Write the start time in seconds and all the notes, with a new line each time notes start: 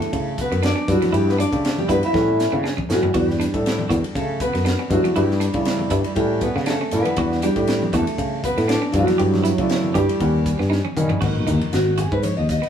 Already playing: G3 A3 B3 D4 E4 A4
0.02 ride
0.13 C#3, kick, ride
0.38 B3 B4, kick, hi-hat pedal, ride
0.52 F#2 B3, ride
0.63 D4 D5, snare, ride
0.76 C#4
0.88 G2 F#3 A3 B3 D4 E4 F#4, kick, hi-hat pedal, ride
1.02 B3, muted fretless electric bass stroke, snare, ride, high conga
1.13 G2 G3 E4 G4, ride
1.28 B3 B4, snare
1.38 D4 D5, hi-hat pedal, ride
1.52 C#3 A3 B3 G4 D5, kick, ride
1.65 snare, ride
1.77 G3 G4, high conga
1.88 G2 B3 E4 B4, kick, hi-hat pedal, ride, low conga
2.03 E4 E5, ride
2.13 A2 G3 B3 C#4 F#4, kick, snare, high conga
2.40 snare, hi-hat pedal
2.52 C#3 B3, low conga
2.64 D4, snare
2.77 C#4, kick, high conga
2.89 A2 G3 B3 C#4 F#4, snare, hi-hat pedal, low conga
2.94 F#3
3.03 B3, muted fretless electric bass stroke, floor tom, low conga
3.14 E2 G3 B3 D4 F#4, kick, ride
3.19 G3 G4
3.30 snare
3.40 D4, snare, hi-hat pedal, ride
3.54 A2 G3 B3 D4 A4, kick, ride
3.66 snare, ride
3.79 high conga
3.89 E2 F#4, kick, hi-hat pedal, ride, low conga
4.04 ride
4.15 C#3 A3 A4, kick, ride
4.40 B3 B4, kick, hi-hat pedal, ride
4.53 F#2 B3, snare, ride
4.65 D4, snare, ride
4.79 C#4
4.90 G2 F#3 A3 B3 D4 E4 F#4, kick, hi-hat pedal, ride, low conga
5.03 B3, muted fretless electric bass stroke, ride, high conga
5.15 G2 G3 E4 G4, ride
5.31 snare
5.40 D4, snare, hi-hat pedal, ride
5.54 C#3 A3 B3 E4 D5, kick, ride
5.65 snare, ride
5.79 high conga
5.90 G2 E4, kick, hi-hat pedal, ride, low conga
6.04 ride
6.15 A2 G3 B3 C#4 F#4 G4, kick, ride
6.41 B3 B4, kick, hi-hat pedal, ride
6.56 C#3 B3, snare
6.66 A3 D4 A4, snare, ride
6.81 C#4
6.91 A2 G3 B3 C#4 E4 B4, hi-hat pedal, ride, low conga
7.05 B3, muted fretless electric bass stroke, ride, high conga
7.16 E2 G3 B3 D4 F#4, kick, ride
7.32 snare
7.42 G3 D4 G4, snare, hi-hat pedal, ride
7.56 A2 G3 B3 D4 G4, kick, ride
7.67 snare, ride
7.82 high conga
7.93 E2 A3 F#4 A4, kick, hi-hat pedal, ride, low conga
8.07 ride
8.18 C#3, kick, ride
8.44 B3 B4, kick, hi-hat pedal, ride
8.58 A2 B3, snare, ride
8.68 D4 D5, snare, ride
8.82 C#4
8.92 G2 F#3 A3 B3 D4 E4 F#4, kick, hi-hat pedal, ride, low conga
9.07 B3, muted fretless electric bass stroke, snare, ride, high conga
9.18 G2 G4, ride
9.34 snare, high conga
9.44 E4, snare, hi-hat pedal, ride
9.58 C#3 A3 B3 E4 D5, kick, ride
9.70 snare, ride
9.84 high conga
9.94 G2 G3 G4, kick, hi-hat pedal, ride, low conga
10.09 ride
10.20 D#2 G3 B3 C#4 F#5, kick, ride
10.46 kick, hi-hat pedal, ride
10.59 G2 B3, snare
10.70 D#4, snare
10.85 C#4, high tom
10.97 D#3 G3 B3 C#4 D#4, hi-hat pedal, mid tom, low conga
11.09 B3, muted fretless electric bass stroke, floor tom, high conga
11.21 G#1 A#3 B3 D#4 F#4, kick, crash
11.47 D#2 D#4, hi-hat pedal, ride, low conga
11.61 ride, high conga
11.73 G#1 F#4, snare, hi-hat pedal, ride
11.98 F#4 G#4, hi-hat pedal, ride, low conga
12.12 G#2 B4, kick
12.22 C#5, hi-hat pedal, ride, high conga
12.37 D#2 D#5
12.49 D#5, kick, snare, hi-hat pedal, ride
12.62 B3, ride